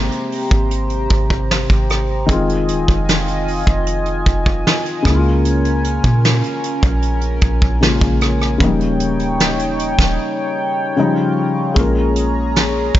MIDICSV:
0, 0, Header, 1, 5, 480
1, 0, Start_track
1, 0, Tempo, 789474
1, 1392, Time_signature, 4, 2, 24, 8
1, 7902, End_track
2, 0, Start_track
2, 0, Title_t, "Analog synth pad"
2, 0, Program_c, 0, 89
2, 0, Note_on_c, 0, 67, 79
2, 0, Note_on_c, 0, 72, 73
2, 0, Note_on_c, 0, 82, 85
2, 1372, Note_off_c, 0, 72, 0
2, 1372, Note_off_c, 0, 82, 0
2, 1373, Note_off_c, 0, 67, 0
2, 1390, Note_on_c, 0, 65, 81
2, 1390, Note_on_c, 0, 80, 86
2, 1391, Note_on_c, 0, 75, 71
2, 3054, Note_off_c, 0, 65, 0
2, 3054, Note_off_c, 0, 75, 0
2, 3072, Note_on_c, 0, 61, 72
2, 3072, Note_on_c, 0, 70, 70
2, 5207, Note_off_c, 0, 80, 0
2, 5210, Note_off_c, 0, 61, 0
2, 5210, Note_off_c, 0, 70, 0
2, 5233, Note_on_c, 0, 63, 77
2, 5233, Note_on_c, 0, 73, 71
2, 5233, Note_on_c, 0, 79, 85
2, 6658, Note_off_c, 0, 63, 0
2, 6671, Note_on_c, 0, 65, 75
2, 7133, Note_off_c, 0, 73, 0
2, 7133, Note_off_c, 0, 79, 0
2, 7146, Note_off_c, 0, 65, 0
2, 7152, Note_on_c, 0, 73, 69
2, 7152, Note_on_c, 0, 82, 85
2, 7153, Note_on_c, 0, 68, 83
2, 7902, Note_off_c, 0, 68, 0
2, 7902, Note_off_c, 0, 73, 0
2, 7902, Note_off_c, 0, 82, 0
2, 7902, End_track
3, 0, Start_track
3, 0, Title_t, "Felt piano"
3, 0, Program_c, 1, 0
3, 0, Control_c, 1, 64, 127
3, 0, Note_on_c, 1, 48, 78
3, 0, Note_on_c, 1, 56, 66
3, 0, Note_on_c, 1, 58, 67
3, 0, Note_on_c, 1, 67, 79
3, 1360, Note_off_c, 1, 48, 0
3, 1366, Note_off_c, 1, 56, 0
3, 1372, Note_off_c, 1, 58, 0
3, 1376, Note_on_c, 1, 51, 79
3, 1378, Note_off_c, 1, 67, 0
3, 1388, Note_on_c, 1, 56, 70
3, 1399, Control_c, 1, 64, 0
3, 1399, Note_on_c, 1, 60, 69
3, 1412, Note_on_c, 1, 65, 86
3, 1516, Control_c, 1, 64, 127
3, 3040, Note_off_c, 1, 51, 0
3, 3045, Note_off_c, 1, 56, 0
3, 3051, Note_off_c, 1, 60, 0
3, 3056, Note_on_c, 1, 49, 76
3, 3057, Note_off_c, 1, 65, 0
3, 3067, Note_on_c, 1, 56, 73
3, 3079, Control_c, 1, 64, 0
3, 3079, Note_on_c, 1, 58, 72
3, 3092, Note_on_c, 1, 64, 64
3, 3121, Note_off_c, 1, 64, 0
3, 3131, Note_on_c, 1, 65, 83
3, 3193, Control_c, 1, 64, 127
3, 4719, Note_off_c, 1, 49, 0
3, 4725, Note_off_c, 1, 56, 0
3, 4731, Note_off_c, 1, 58, 0
3, 4745, Note_on_c, 1, 49, 57
3, 4751, Note_on_c, 1, 56, 56
3, 4754, Note_off_c, 1, 65, 0
3, 4757, Note_on_c, 1, 58, 57
3, 4763, Note_on_c, 1, 65, 65
3, 5208, Note_off_c, 1, 49, 0
3, 5217, Note_on_c, 1, 49, 73
3, 5229, Note_on_c, 1, 53, 55
3, 5231, Note_off_c, 1, 56, 0
3, 5232, Note_off_c, 1, 58, 0
3, 5237, Note_off_c, 1, 65, 0
3, 5240, Control_c, 1, 64, 0
3, 5241, Note_on_c, 1, 58, 73
3, 5253, Note_on_c, 1, 63, 84
3, 5269, Note_on_c, 1, 55, 70
3, 5270, Note_off_c, 1, 53, 0
3, 5345, Control_c, 1, 64, 127
3, 6640, Note_off_c, 1, 49, 0
3, 6652, Note_off_c, 1, 58, 0
3, 6658, Note_off_c, 1, 63, 0
3, 6666, Note_off_c, 1, 55, 0
3, 6667, Note_on_c, 1, 49, 83
3, 6672, Note_on_c, 1, 53, 70
3, 6679, Note_on_c, 1, 55, 71
3, 6681, Control_c, 1, 64, 0
3, 6685, Note_on_c, 1, 63, 89
3, 6771, Control_c, 1, 64, 127
3, 7138, Note_on_c, 1, 56, 75
3, 7147, Note_on_c, 1, 58, 68
3, 7149, Note_off_c, 1, 49, 0
3, 7152, Note_off_c, 1, 53, 0
3, 7155, Note_off_c, 1, 55, 0
3, 7156, Note_on_c, 1, 61, 70
3, 7158, Note_off_c, 1, 63, 0
3, 7160, Control_c, 1, 64, 0
3, 7165, Note_on_c, 1, 65, 70
3, 7174, Note_on_c, 1, 70, 85
3, 7252, Control_c, 1, 64, 127
3, 7902, Note_off_c, 1, 56, 0
3, 7902, Note_off_c, 1, 58, 0
3, 7902, Note_off_c, 1, 61, 0
3, 7902, Note_off_c, 1, 65, 0
3, 7902, Note_off_c, 1, 70, 0
3, 7902, End_track
4, 0, Start_track
4, 0, Title_t, "808-style bass"
4, 0, Program_c, 2, 38
4, 0, Note_on_c, 2, 32, 102
4, 63, Note_off_c, 2, 32, 0
4, 312, Note_on_c, 2, 32, 96
4, 658, Note_off_c, 2, 32, 0
4, 672, Note_on_c, 2, 32, 103
4, 1018, Note_off_c, 2, 32, 0
4, 1034, Note_on_c, 2, 32, 103
4, 1378, Note_off_c, 2, 32, 0
4, 1393, Note_on_c, 2, 29, 98
4, 1632, Note_on_c, 2, 27, 99
4, 1642, Note_off_c, 2, 29, 0
4, 1746, Note_off_c, 2, 27, 0
4, 1754, Note_on_c, 2, 29, 104
4, 2213, Note_off_c, 2, 29, 0
4, 2232, Note_on_c, 2, 29, 94
4, 2577, Note_off_c, 2, 29, 0
4, 2593, Note_on_c, 2, 29, 98
4, 2823, Note_off_c, 2, 29, 0
4, 3073, Note_on_c, 2, 37, 105
4, 3648, Note_off_c, 2, 37, 0
4, 3674, Note_on_c, 2, 46, 103
4, 3903, Note_off_c, 2, 46, 0
4, 4152, Note_on_c, 2, 34, 106
4, 4497, Note_off_c, 2, 34, 0
4, 4512, Note_on_c, 2, 34, 103
4, 4627, Note_off_c, 2, 34, 0
4, 4633, Note_on_c, 2, 34, 100
4, 4863, Note_off_c, 2, 34, 0
4, 4873, Note_on_c, 2, 34, 103
4, 5218, Note_off_c, 2, 34, 0
4, 5232, Note_on_c, 2, 27, 106
4, 6047, Note_off_c, 2, 27, 0
4, 6072, Note_on_c, 2, 27, 106
4, 6192, Note_off_c, 2, 27, 0
4, 7152, Note_on_c, 2, 34, 102
4, 7848, Note_off_c, 2, 34, 0
4, 7872, Note_on_c, 2, 34, 98
4, 7902, Note_off_c, 2, 34, 0
4, 7902, End_track
5, 0, Start_track
5, 0, Title_t, "Drums"
5, 72, Note_on_c, 9, 42, 47
5, 133, Note_off_c, 9, 42, 0
5, 194, Note_on_c, 9, 46, 47
5, 255, Note_off_c, 9, 46, 0
5, 312, Note_on_c, 9, 36, 103
5, 315, Note_on_c, 9, 42, 56
5, 372, Note_off_c, 9, 36, 0
5, 376, Note_off_c, 9, 42, 0
5, 431, Note_on_c, 9, 42, 69
5, 491, Note_off_c, 9, 42, 0
5, 545, Note_on_c, 9, 42, 44
5, 606, Note_off_c, 9, 42, 0
5, 667, Note_on_c, 9, 42, 64
5, 672, Note_on_c, 9, 36, 91
5, 728, Note_off_c, 9, 42, 0
5, 733, Note_off_c, 9, 36, 0
5, 792, Note_on_c, 9, 36, 82
5, 853, Note_off_c, 9, 36, 0
5, 919, Note_on_c, 9, 38, 117
5, 979, Note_off_c, 9, 38, 0
5, 1033, Note_on_c, 9, 36, 94
5, 1033, Note_on_c, 9, 42, 58
5, 1094, Note_off_c, 9, 36, 0
5, 1094, Note_off_c, 9, 42, 0
5, 1153, Note_on_c, 9, 42, 58
5, 1159, Note_on_c, 9, 37, 92
5, 1213, Note_off_c, 9, 42, 0
5, 1220, Note_off_c, 9, 37, 0
5, 1392, Note_on_c, 9, 36, 109
5, 1393, Note_on_c, 9, 42, 70
5, 1453, Note_off_c, 9, 36, 0
5, 1454, Note_off_c, 9, 42, 0
5, 1515, Note_on_c, 9, 42, 48
5, 1576, Note_off_c, 9, 42, 0
5, 1632, Note_on_c, 9, 42, 65
5, 1693, Note_off_c, 9, 42, 0
5, 1752, Note_on_c, 9, 42, 50
5, 1753, Note_on_c, 9, 36, 89
5, 1812, Note_off_c, 9, 42, 0
5, 1814, Note_off_c, 9, 36, 0
5, 1876, Note_on_c, 9, 42, 71
5, 1880, Note_on_c, 9, 38, 105
5, 1937, Note_off_c, 9, 42, 0
5, 1941, Note_off_c, 9, 38, 0
5, 1992, Note_on_c, 9, 42, 49
5, 2053, Note_off_c, 9, 42, 0
5, 2115, Note_on_c, 9, 46, 50
5, 2176, Note_off_c, 9, 46, 0
5, 2232, Note_on_c, 9, 36, 98
5, 2235, Note_on_c, 9, 42, 56
5, 2293, Note_off_c, 9, 36, 0
5, 2296, Note_off_c, 9, 42, 0
5, 2351, Note_on_c, 9, 42, 70
5, 2411, Note_off_c, 9, 42, 0
5, 2466, Note_on_c, 9, 42, 43
5, 2526, Note_off_c, 9, 42, 0
5, 2589, Note_on_c, 9, 42, 65
5, 2592, Note_on_c, 9, 36, 91
5, 2649, Note_off_c, 9, 42, 0
5, 2653, Note_off_c, 9, 36, 0
5, 2713, Note_on_c, 9, 36, 90
5, 2773, Note_off_c, 9, 36, 0
5, 2839, Note_on_c, 9, 38, 112
5, 2900, Note_off_c, 9, 38, 0
5, 2954, Note_on_c, 9, 42, 55
5, 3015, Note_off_c, 9, 42, 0
5, 3072, Note_on_c, 9, 36, 98
5, 3073, Note_on_c, 9, 42, 60
5, 3080, Note_on_c, 9, 37, 93
5, 3133, Note_off_c, 9, 36, 0
5, 3133, Note_off_c, 9, 42, 0
5, 3140, Note_off_c, 9, 37, 0
5, 3313, Note_on_c, 9, 42, 73
5, 3373, Note_off_c, 9, 42, 0
5, 3434, Note_on_c, 9, 42, 48
5, 3495, Note_off_c, 9, 42, 0
5, 3553, Note_on_c, 9, 42, 65
5, 3613, Note_off_c, 9, 42, 0
5, 3672, Note_on_c, 9, 42, 52
5, 3673, Note_on_c, 9, 36, 96
5, 3733, Note_off_c, 9, 42, 0
5, 3734, Note_off_c, 9, 36, 0
5, 3797, Note_on_c, 9, 42, 73
5, 3800, Note_on_c, 9, 38, 111
5, 3858, Note_off_c, 9, 42, 0
5, 3861, Note_off_c, 9, 38, 0
5, 3912, Note_on_c, 9, 42, 52
5, 3973, Note_off_c, 9, 42, 0
5, 4035, Note_on_c, 9, 42, 69
5, 4096, Note_off_c, 9, 42, 0
5, 4152, Note_on_c, 9, 36, 102
5, 4155, Note_on_c, 9, 42, 56
5, 4212, Note_off_c, 9, 36, 0
5, 4216, Note_off_c, 9, 42, 0
5, 4270, Note_on_c, 9, 42, 71
5, 4331, Note_off_c, 9, 42, 0
5, 4384, Note_on_c, 9, 42, 46
5, 4445, Note_off_c, 9, 42, 0
5, 4507, Note_on_c, 9, 42, 67
5, 4512, Note_on_c, 9, 36, 86
5, 4568, Note_off_c, 9, 42, 0
5, 4573, Note_off_c, 9, 36, 0
5, 4632, Note_on_c, 9, 36, 90
5, 4693, Note_off_c, 9, 36, 0
5, 4758, Note_on_c, 9, 38, 120
5, 4819, Note_off_c, 9, 38, 0
5, 4873, Note_on_c, 9, 36, 92
5, 4873, Note_on_c, 9, 42, 57
5, 4933, Note_off_c, 9, 36, 0
5, 4934, Note_off_c, 9, 42, 0
5, 4991, Note_on_c, 9, 42, 61
5, 4998, Note_on_c, 9, 37, 96
5, 5052, Note_off_c, 9, 42, 0
5, 5059, Note_off_c, 9, 37, 0
5, 5116, Note_on_c, 9, 37, 67
5, 5177, Note_off_c, 9, 37, 0
5, 5231, Note_on_c, 9, 36, 117
5, 5231, Note_on_c, 9, 42, 68
5, 5292, Note_off_c, 9, 36, 0
5, 5292, Note_off_c, 9, 42, 0
5, 5354, Note_on_c, 9, 42, 48
5, 5415, Note_off_c, 9, 42, 0
5, 5471, Note_on_c, 9, 42, 68
5, 5532, Note_off_c, 9, 42, 0
5, 5591, Note_on_c, 9, 42, 54
5, 5651, Note_off_c, 9, 42, 0
5, 5716, Note_on_c, 9, 42, 74
5, 5719, Note_on_c, 9, 38, 120
5, 5776, Note_off_c, 9, 42, 0
5, 5780, Note_off_c, 9, 38, 0
5, 5832, Note_on_c, 9, 42, 49
5, 5893, Note_off_c, 9, 42, 0
5, 5954, Note_on_c, 9, 42, 67
5, 6015, Note_off_c, 9, 42, 0
5, 6072, Note_on_c, 9, 36, 99
5, 6075, Note_on_c, 9, 42, 59
5, 6079, Note_on_c, 9, 38, 68
5, 6132, Note_off_c, 9, 36, 0
5, 6136, Note_off_c, 9, 42, 0
5, 6139, Note_off_c, 9, 38, 0
5, 7152, Note_on_c, 9, 36, 110
5, 7152, Note_on_c, 9, 42, 77
5, 7212, Note_off_c, 9, 36, 0
5, 7213, Note_off_c, 9, 42, 0
5, 7392, Note_on_c, 9, 42, 67
5, 7453, Note_off_c, 9, 42, 0
5, 7636, Note_on_c, 9, 42, 69
5, 7640, Note_on_c, 9, 38, 113
5, 7697, Note_off_c, 9, 42, 0
5, 7701, Note_off_c, 9, 38, 0
5, 7872, Note_on_c, 9, 36, 97
5, 7874, Note_on_c, 9, 42, 63
5, 7902, Note_off_c, 9, 36, 0
5, 7902, Note_off_c, 9, 42, 0
5, 7902, End_track
0, 0, End_of_file